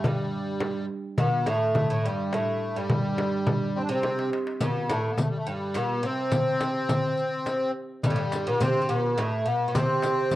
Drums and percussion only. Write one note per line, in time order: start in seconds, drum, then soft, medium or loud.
0.04 frame drum medium
0.04 darbuka dum medium
0.33 darbuka ka soft
0.60 darbuka tek medium
0.60 frame drum medium
1.18 darbuka dum medium
1.18 frame drum medium
1.46 darbuka tek medium
1.46 frame drum medium
1.75 frame drum medium
1.75 darbuka dum medium
2.04 darbuka ka soft
2.33 darbuka tek medium
2.33 frame drum medium
2.90 frame drum medium
2.90 darbuka dum medium
3.18 darbuka tek medium
3.18 frame drum medium
3.47 frame drum medium
3.47 darbuka dum medium
3.76 darbuka ka soft
4.03 darbuka tek medium
4.03 frame drum medium
4.19 darbuka ka medium
4.33 darbuka tek medium
4.47 darbuka ka medium
4.60 riq medium
4.60 frame drum medium
4.60 darbuka dum medium
4.89 riq soft
4.89 frame drum medium
5.18 riq medium
5.18 frame drum medium
5.18 darbuka dum medium
5.47 riq soft
5.47 darbuka ka soft
5.74 riq soft
5.74 darbuka tek medium
5.74 frame drum medium
6.32 riq medium
6.32 frame drum medium
6.32 darbuka dum medium
6.61 riq soft
6.61 darbuka tek medium
6.61 frame drum medium
6.89 riq medium
6.89 frame drum medium
6.89 darbuka dum medium
7.17 riq soft
7.17 darbuka ka soft
7.46 riq soft
7.46 darbuka tek medium
7.46 frame drum medium
8.03 riq medium
8.03 darbuka dum medium
8.03 frame drum medium
8.32 riq soft
8.32 darbuka tek medium
8.32 frame drum medium
8.61 riq medium
8.61 darbuka dum medium
8.61 frame drum medium
8.89 riq soft
8.89 darbuka ka soft
9.18 riq soft
9.18 darbuka tek medium
9.18 frame drum medium
9.75 riq medium
9.75 darbuka dum medium
9.75 frame drum medium
10.02 riq soft
10.02 darbuka tek medium
10.02 frame drum medium
10.31 riq medium
10.31 darbuka dum medium